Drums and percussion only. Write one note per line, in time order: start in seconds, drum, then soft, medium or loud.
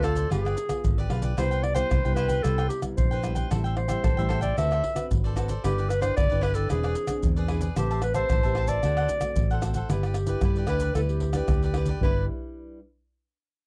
0.04 pandeiro medium
0.04 tamborim medium
0.04 maracas medium
0.16 pandeiro medium
0.16 maracas medium
0.16 surdo soft
0.32 pandeiro medium
0.32 tamborim medium
0.32 maracas medium
0.32 surdo medium
0.46 pandeiro soft
0.46 tamborim medium
0.46 maracas soft
0.57 pandeiro medium
0.57 maracas medium
0.69 pandeiro medium
0.69 tamborim medium
0.69 maracas medium
0.69 surdo soft
0.84 pandeiro medium
0.84 maracas medium
0.84 surdo loud
0.99 pandeiro soft
0.99 maracas soft
1.10 pandeiro medium
1.10 tamborim medium
1.22 pandeiro medium
1.22 maracas medium
1.22 surdo soft
1.38 pandeiro medium
1.38 tamborim medium
1.38 maracas medium
1.38 surdo medium
1.52 pandeiro soft
1.52 maracas soft
1.64 pandeiro medium
1.64 tamborim medium
1.76 pandeiro medium
1.76 tamborim medium
1.76 maracas medium
1.76 surdo soft
1.91 pandeiro medium
1.91 tamborim medium
1.91 maracas medium
1.91 surdo loud
2.05 pandeiro soft
2.05 maracas soft
2.17 pandeiro medium
2.17 tamborim medium
2.17 maracas medium
2.29 pandeiro medium
2.29 maracas medium
2.29 surdo soft
2.44 pandeiro medium
2.44 tamborim medium
2.44 maracas medium
2.44 surdo medium
2.59 pandeiro soft
2.59 tamborim medium
2.59 maracas soft
2.70 pandeiro medium
2.70 maracas medium
2.82 pandeiro medium
2.82 tamborim medium
2.82 maracas medium
2.82 surdo soft
2.98 pandeiro medium
2.98 maracas medium
2.98 surdo loud
3.12 pandeiro soft
3.12 maracas soft
3.24 pandeiro medium
3.24 tamborim medium
3.24 maracas medium
3.36 pandeiro medium
3.36 maracas medium
3.36 surdo soft
3.51 pandeiro medium
3.51 tamborim medium
3.51 maracas loud
3.51 surdo medium
3.65 pandeiro soft
3.65 maracas soft
3.77 pandeiro medium
3.77 tamborim medium
3.89 pandeiro medium
3.89 tamborim medium
3.89 maracas medium
3.89 surdo soft
4.04 pandeiro medium
4.04 tamborim medium
4.04 maracas medium
4.04 surdo loud
4.19 pandeiro soft
4.19 maracas soft
4.30 pandeiro medium
4.30 tamborim medium
4.42 pandeiro medium
4.42 maracas medium
4.42 surdo soft
4.58 pandeiro medium
4.58 tamborim medium
4.58 maracas medium
4.58 surdo soft
4.72 pandeiro soft
4.72 tamborim medium
4.72 maracas soft
4.84 pandeiro medium
4.84 surdo soft
4.96 pandeiro medium
4.96 tamborim medium
4.96 maracas medium
4.96 surdo soft
5.11 pandeiro medium
5.11 maracas medium
5.11 surdo medium
5.25 pandeiro soft
5.25 maracas soft
5.37 pandeiro medium
5.37 tamborim medium
5.37 maracas medium
5.49 pandeiro medium
5.49 maracas medium
5.49 surdo soft
5.64 pandeiro medium
5.64 tamborim medium
5.64 maracas medium
5.64 surdo medium
5.78 pandeiro soft
5.78 maracas soft
5.90 pandeiro medium
5.90 tamborim medium
5.90 maracas medium
6.02 pandeiro medium
6.02 tamborim medium
6.02 maracas medium
6.02 surdo soft
6.17 pandeiro medium
6.17 tamborim medium
6.17 maracas medium
6.17 surdo loud
6.32 pandeiro soft
6.32 maracas soft
6.43 pandeiro medium
6.43 tamborim medium
6.55 pandeiro medium
6.55 maracas medium
6.55 surdo soft
6.70 pandeiro medium
6.70 tamborim medium
6.70 maracas medium
6.70 surdo medium
6.84 pandeiro soft
6.84 tamborim medium
6.84 maracas soft
6.95 pandeiro medium
6.95 maracas medium
7.07 pandeiro medium
7.07 tamborim medium
7.07 maracas medium
7.07 surdo soft
7.23 pandeiro medium
7.23 maracas medium
7.23 surdo loud
7.37 pandeiro soft
7.37 maracas soft
7.48 pandeiro medium
7.48 tamborim medium
7.61 pandeiro medium
7.61 maracas medium
7.61 surdo soft
7.76 pandeiro medium
7.76 tamborim medium
7.76 maracas medium
7.76 surdo medium
7.91 pandeiro soft
7.91 maracas soft
8.02 pandeiro medium
8.02 tamborim medium
8.02 maracas medium
8.14 pandeiro medium
8.14 tamborim medium
8.14 maracas medium
8.14 surdo soft
8.30 pandeiro medium
8.30 tamborim medium
8.30 maracas medium
8.30 surdo loud
8.44 pandeiro soft
8.44 maracas soft
8.55 pandeiro medium
8.55 tamborim medium
8.67 pandeiro medium
8.67 maracas medium
8.67 surdo soft
8.83 pandeiro medium
8.83 tamborim medium
8.83 maracas medium
8.83 surdo medium
8.97 pandeiro soft
8.97 tamborim medium
8.97 maracas soft
9.09 pandeiro medium
9.09 maracas medium
9.09 surdo soft
9.21 pandeiro medium
9.21 tamborim medium
9.21 maracas medium
9.21 surdo soft
9.36 pandeiro medium
9.36 maracas medium
9.36 surdo medium
9.51 pandeiro soft
9.51 maracas soft
9.62 pandeiro medium
9.62 tamborim medium
9.62 maracas medium
9.74 pandeiro medium
9.74 maracas medium
9.74 surdo soft
9.90 pandeiro medium
9.90 tamborim medium
9.90 maracas medium
9.90 surdo medium
10.03 pandeiro soft
10.03 tamborim medium
10.03 maracas soft
10.14 pandeiro medium
10.14 tamborim medium
10.14 maracas medium
10.27 pandeiro medium
10.27 maracas medium
10.27 surdo soft
10.41 pandeiro medium
10.41 tamborim medium
10.41 maracas medium
10.41 surdo loud
10.56 pandeiro soft
10.56 maracas soft
10.67 pandeiro medium
10.67 tamborim medium
10.67 maracas medium
10.80 pandeiro medium
10.80 maracas medium
10.80 surdo soft
10.95 pandeiro medium
10.95 tamborim medium
10.95 maracas medium
10.95 surdo medium
11.09 pandeiro soft
11.09 maracas soft
11.20 pandeiro medium
11.20 surdo soft
11.33 pandeiro medium
11.33 tamborim medium
11.33 maracas medium
11.33 surdo soft
11.48 pandeiro medium
11.48 tamborim medium
11.48 maracas medium
11.48 surdo loud
11.62 pandeiro soft
11.62 maracas soft
11.74 pandeiro medium
11.74 tamborim medium
11.86 pandeiro medium
11.86 maracas medium
11.86 surdo soft
12.01 surdo loud